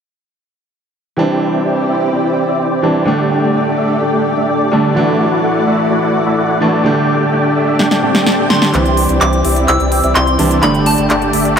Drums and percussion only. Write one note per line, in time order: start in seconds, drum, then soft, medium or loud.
7.79 snare medium
7.91 snare medium
8.15 snare medium
8.26 snare medium
8.50 snare medium
8.62 snare medium
8.74 clap soft
8.74 closed hi-hat medium
8.86 closed hi-hat soft
8.97 open hi-hat loud
9.09 closed hi-hat soft
9.21 clap soft
9.21 closed hi-hat soft
9.33 closed hi-hat soft
9.45 open hi-hat loud
9.56 closed hi-hat medium
9.68 clap soft
9.68 closed hi-hat medium
9.80 closed hi-hat soft
9.92 open hi-hat loud
10.04 closed hi-hat medium
10.15 clap soft
10.15 closed hi-hat soft
10.27 closed hi-hat soft
10.39 open hi-hat loud
10.51 closed hi-hat soft
10.63 clap soft
10.63 closed hi-hat soft
10.74 closed hi-hat soft
10.86 open hi-hat loud
10.98 closed hi-hat soft
11.10 clap medium
11.10 closed hi-hat soft
11.22 closed hi-hat soft
11.33 open hi-hat loud
11.45 closed hi-hat soft